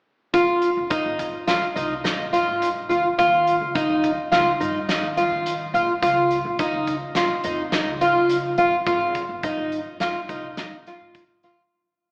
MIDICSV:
0, 0, Header, 1, 4, 480
1, 0, Start_track
1, 0, Key_signature, -4, "major"
1, 0, Tempo, 569260
1, 282, Time_signature, 5, 2, 24, 8
1, 10216, End_track
2, 0, Start_track
2, 0, Title_t, "Twelve-string acoustic guitar"
2, 0, Program_c, 0, 25
2, 283, Note_on_c, 0, 65, 72
2, 578, Note_off_c, 0, 65, 0
2, 762, Note_on_c, 0, 63, 67
2, 1058, Note_off_c, 0, 63, 0
2, 1243, Note_on_c, 0, 65, 69
2, 1391, Note_off_c, 0, 65, 0
2, 1482, Note_on_c, 0, 63, 60
2, 1630, Note_off_c, 0, 63, 0
2, 1722, Note_on_c, 0, 63, 70
2, 1870, Note_off_c, 0, 63, 0
2, 1964, Note_on_c, 0, 65, 65
2, 2259, Note_off_c, 0, 65, 0
2, 2440, Note_on_c, 0, 65, 59
2, 2589, Note_off_c, 0, 65, 0
2, 2686, Note_on_c, 0, 65, 70
2, 2980, Note_off_c, 0, 65, 0
2, 3162, Note_on_c, 0, 63, 69
2, 3457, Note_off_c, 0, 63, 0
2, 3640, Note_on_c, 0, 65, 73
2, 3788, Note_off_c, 0, 65, 0
2, 3882, Note_on_c, 0, 63, 63
2, 4029, Note_off_c, 0, 63, 0
2, 4120, Note_on_c, 0, 63, 77
2, 4268, Note_off_c, 0, 63, 0
2, 4360, Note_on_c, 0, 65, 65
2, 4655, Note_off_c, 0, 65, 0
2, 4841, Note_on_c, 0, 65, 61
2, 4988, Note_off_c, 0, 65, 0
2, 5079, Note_on_c, 0, 65, 72
2, 5373, Note_off_c, 0, 65, 0
2, 5559, Note_on_c, 0, 63, 72
2, 5853, Note_off_c, 0, 63, 0
2, 6041, Note_on_c, 0, 65, 72
2, 6187, Note_off_c, 0, 65, 0
2, 6276, Note_on_c, 0, 63, 64
2, 6423, Note_off_c, 0, 63, 0
2, 6516, Note_on_c, 0, 63, 74
2, 6663, Note_off_c, 0, 63, 0
2, 6756, Note_on_c, 0, 65, 68
2, 7050, Note_off_c, 0, 65, 0
2, 7235, Note_on_c, 0, 65, 69
2, 7382, Note_off_c, 0, 65, 0
2, 7475, Note_on_c, 0, 65, 68
2, 7770, Note_off_c, 0, 65, 0
2, 7959, Note_on_c, 0, 63, 73
2, 8253, Note_off_c, 0, 63, 0
2, 8438, Note_on_c, 0, 65, 68
2, 8585, Note_off_c, 0, 65, 0
2, 8677, Note_on_c, 0, 63, 60
2, 8825, Note_off_c, 0, 63, 0
2, 8923, Note_on_c, 0, 63, 69
2, 9069, Note_off_c, 0, 63, 0
2, 9168, Note_on_c, 0, 65, 62
2, 9460, Note_off_c, 0, 65, 0
2, 9645, Note_on_c, 0, 65, 66
2, 9791, Note_off_c, 0, 65, 0
2, 10216, End_track
3, 0, Start_track
3, 0, Title_t, "Upright bass"
3, 0, Program_c, 1, 32
3, 286, Note_on_c, 1, 32, 68
3, 611, Note_off_c, 1, 32, 0
3, 649, Note_on_c, 1, 29, 68
3, 755, Note_off_c, 1, 29, 0
3, 888, Note_on_c, 1, 32, 69
3, 1103, Note_off_c, 1, 32, 0
3, 1246, Note_on_c, 1, 29, 69
3, 1354, Note_off_c, 1, 29, 0
3, 1486, Note_on_c, 1, 36, 83
3, 1702, Note_off_c, 1, 36, 0
3, 1851, Note_on_c, 1, 32, 69
3, 2065, Note_off_c, 1, 32, 0
3, 2086, Note_on_c, 1, 44, 68
3, 2412, Note_off_c, 1, 44, 0
3, 2447, Note_on_c, 1, 39, 81
3, 2555, Note_off_c, 1, 39, 0
3, 2687, Note_on_c, 1, 39, 77
3, 3012, Note_off_c, 1, 39, 0
3, 3046, Note_on_c, 1, 37, 65
3, 3154, Note_off_c, 1, 37, 0
3, 3284, Note_on_c, 1, 39, 72
3, 3501, Note_off_c, 1, 39, 0
3, 3641, Note_on_c, 1, 37, 75
3, 3751, Note_off_c, 1, 37, 0
3, 3887, Note_on_c, 1, 43, 78
3, 4101, Note_off_c, 1, 43, 0
3, 4240, Note_on_c, 1, 39, 73
3, 4457, Note_off_c, 1, 39, 0
3, 4478, Note_on_c, 1, 51, 71
3, 4805, Note_off_c, 1, 51, 0
3, 4837, Note_on_c, 1, 34, 85
3, 4947, Note_off_c, 1, 34, 0
3, 5080, Note_on_c, 1, 37, 79
3, 5405, Note_off_c, 1, 37, 0
3, 5438, Note_on_c, 1, 34, 73
3, 5547, Note_off_c, 1, 34, 0
3, 5680, Note_on_c, 1, 37, 73
3, 5896, Note_off_c, 1, 37, 0
3, 6036, Note_on_c, 1, 34, 76
3, 6145, Note_off_c, 1, 34, 0
3, 6280, Note_on_c, 1, 41, 81
3, 6495, Note_off_c, 1, 41, 0
3, 6638, Note_on_c, 1, 37, 73
3, 6854, Note_off_c, 1, 37, 0
3, 6870, Note_on_c, 1, 49, 69
3, 7199, Note_off_c, 1, 49, 0
3, 7235, Note_on_c, 1, 32, 79
3, 7343, Note_off_c, 1, 32, 0
3, 7476, Note_on_c, 1, 32, 79
3, 7802, Note_off_c, 1, 32, 0
3, 7835, Note_on_c, 1, 31, 68
3, 7943, Note_off_c, 1, 31, 0
3, 8072, Note_on_c, 1, 32, 67
3, 8291, Note_off_c, 1, 32, 0
3, 8436, Note_on_c, 1, 31, 78
3, 8544, Note_off_c, 1, 31, 0
3, 8677, Note_on_c, 1, 36, 77
3, 8894, Note_off_c, 1, 36, 0
3, 9036, Note_on_c, 1, 32, 69
3, 9254, Note_off_c, 1, 32, 0
3, 9284, Note_on_c, 1, 44, 70
3, 9608, Note_off_c, 1, 44, 0
3, 9643, Note_on_c, 1, 39, 73
3, 9750, Note_off_c, 1, 39, 0
3, 10216, End_track
4, 0, Start_track
4, 0, Title_t, "Drums"
4, 284, Note_on_c, 9, 42, 65
4, 285, Note_on_c, 9, 36, 86
4, 368, Note_off_c, 9, 42, 0
4, 369, Note_off_c, 9, 36, 0
4, 521, Note_on_c, 9, 42, 55
4, 606, Note_off_c, 9, 42, 0
4, 762, Note_on_c, 9, 42, 72
4, 766, Note_on_c, 9, 36, 91
4, 846, Note_off_c, 9, 42, 0
4, 850, Note_off_c, 9, 36, 0
4, 1005, Note_on_c, 9, 42, 50
4, 1006, Note_on_c, 9, 36, 57
4, 1089, Note_off_c, 9, 42, 0
4, 1090, Note_off_c, 9, 36, 0
4, 1244, Note_on_c, 9, 38, 88
4, 1244, Note_on_c, 9, 42, 73
4, 1329, Note_off_c, 9, 38, 0
4, 1329, Note_off_c, 9, 42, 0
4, 1491, Note_on_c, 9, 42, 55
4, 1575, Note_off_c, 9, 42, 0
4, 1728, Note_on_c, 9, 38, 93
4, 1728, Note_on_c, 9, 42, 68
4, 1812, Note_off_c, 9, 38, 0
4, 1812, Note_off_c, 9, 42, 0
4, 1970, Note_on_c, 9, 42, 56
4, 2055, Note_off_c, 9, 42, 0
4, 2209, Note_on_c, 9, 42, 70
4, 2294, Note_off_c, 9, 42, 0
4, 2450, Note_on_c, 9, 42, 51
4, 2534, Note_off_c, 9, 42, 0
4, 2688, Note_on_c, 9, 36, 87
4, 2691, Note_on_c, 9, 42, 64
4, 2772, Note_off_c, 9, 36, 0
4, 2776, Note_off_c, 9, 42, 0
4, 2928, Note_on_c, 9, 42, 54
4, 3012, Note_off_c, 9, 42, 0
4, 3166, Note_on_c, 9, 36, 90
4, 3168, Note_on_c, 9, 42, 65
4, 3250, Note_off_c, 9, 36, 0
4, 3252, Note_off_c, 9, 42, 0
4, 3404, Note_on_c, 9, 42, 49
4, 3405, Note_on_c, 9, 36, 58
4, 3488, Note_off_c, 9, 42, 0
4, 3490, Note_off_c, 9, 36, 0
4, 3645, Note_on_c, 9, 38, 88
4, 3645, Note_on_c, 9, 42, 63
4, 3730, Note_off_c, 9, 38, 0
4, 3730, Note_off_c, 9, 42, 0
4, 3888, Note_on_c, 9, 42, 49
4, 3972, Note_off_c, 9, 42, 0
4, 4123, Note_on_c, 9, 38, 90
4, 4123, Note_on_c, 9, 42, 66
4, 4208, Note_off_c, 9, 38, 0
4, 4208, Note_off_c, 9, 42, 0
4, 4363, Note_on_c, 9, 42, 52
4, 4448, Note_off_c, 9, 42, 0
4, 4605, Note_on_c, 9, 42, 72
4, 4689, Note_off_c, 9, 42, 0
4, 4845, Note_on_c, 9, 42, 52
4, 4930, Note_off_c, 9, 42, 0
4, 5081, Note_on_c, 9, 36, 88
4, 5081, Note_on_c, 9, 42, 72
4, 5165, Note_off_c, 9, 36, 0
4, 5165, Note_off_c, 9, 42, 0
4, 5318, Note_on_c, 9, 42, 57
4, 5402, Note_off_c, 9, 42, 0
4, 5557, Note_on_c, 9, 42, 72
4, 5559, Note_on_c, 9, 36, 92
4, 5641, Note_off_c, 9, 42, 0
4, 5643, Note_off_c, 9, 36, 0
4, 5795, Note_on_c, 9, 42, 53
4, 5797, Note_on_c, 9, 36, 59
4, 5880, Note_off_c, 9, 42, 0
4, 5881, Note_off_c, 9, 36, 0
4, 6029, Note_on_c, 9, 38, 89
4, 6029, Note_on_c, 9, 42, 78
4, 6114, Note_off_c, 9, 38, 0
4, 6114, Note_off_c, 9, 42, 0
4, 6271, Note_on_c, 9, 42, 55
4, 6355, Note_off_c, 9, 42, 0
4, 6511, Note_on_c, 9, 38, 94
4, 6511, Note_on_c, 9, 42, 70
4, 6595, Note_off_c, 9, 38, 0
4, 6595, Note_off_c, 9, 42, 0
4, 6755, Note_on_c, 9, 42, 57
4, 6840, Note_off_c, 9, 42, 0
4, 6993, Note_on_c, 9, 42, 66
4, 7078, Note_off_c, 9, 42, 0
4, 7232, Note_on_c, 9, 42, 52
4, 7317, Note_off_c, 9, 42, 0
4, 7475, Note_on_c, 9, 36, 89
4, 7475, Note_on_c, 9, 42, 61
4, 7559, Note_off_c, 9, 42, 0
4, 7560, Note_off_c, 9, 36, 0
4, 7713, Note_on_c, 9, 42, 52
4, 7715, Note_on_c, 9, 36, 67
4, 7797, Note_off_c, 9, 42, 0
4, 7800, Note_off_c, 9, 36, 0
4, 7952, Note_on_c, 9, 42, 68
4, 7955, Note_on_c, 9, 36, 89
4, 8037, Note_off_c, 9, 42, 0
4, 8039, Note_off_c, 9, 36, 0
4, 8196, Note_on_c, 9, 42, 52
4, 8280, Note_off_c, 9, 42, 0
4, 8433, Note_on_c, 9, 38, 90
4, 8433, Note_on_c, 9, 42, 67
4, 8518, Note_off_c, 9, 38, 0
4, 8518, Note_off_c, 9, 42, 0
4, 8678, Note_on_c, 9, 36, 67
4, 8678, Note_on_c, 9, 42, 54
4, 8762, Note_off_c, 9, 36, 0
4, 8762, Note_off_c, 9, 42, 0
4, 8915, Note_on_c, 9, 38, 94
4, 8915, Note_on_c, 9, 42, 70
4, 9000, Note_off_c, 9, 38, 0
4, 9000, Note_off_c, 9, 42, 0
4, 9162, Note_on_c, 9, 38, 31
4, 9162, Note_on_c, 9, 42, 56
4, 9247, Note_off_c, 9, 38, 0
4, 9247, Note_off_c, 9, 42, 0
4, 9398, Note_on_c, 9, 42, 76
4, 9400, Note_on_c, 9, 36, 93
4, 9482, Note_off_c, 9, 42, 0
4, 9484, Note_off_c, 9, 36, 0
4, 9639, Note_on_c, 9, 38, 29
4, 9639, Note_on_c, 9, 42, 53
4, 9724, Note_off_c, 9, 38, 0
4, 9724, Note_off_c, 9, 42, 0
4, 10216, End_track
0, 0, End_of_file